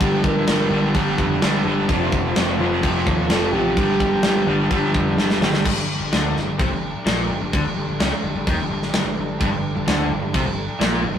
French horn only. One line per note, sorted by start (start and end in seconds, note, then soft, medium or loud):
0.01 0.23 G4 loud
0.25 0.46 A#4 loud
0.46 0.91 A#4 loud
1.88 2.25 D4 loud
2.24 2.60 C4 loud
2.59 3.06 F4 loud
3.29 3.54 A4 loud
3.52 5.17 G4 loud